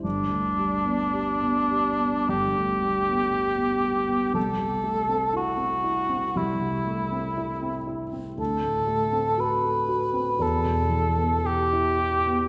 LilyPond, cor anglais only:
\new Staff \with { instrumentName = "Cor anglais" } { \time 4/4 \key g \major \tempo 4 = 59 d'2 g'2 | a'4 fis'4 e'4. r8 | a'4 b'4 a'4 g'4 | }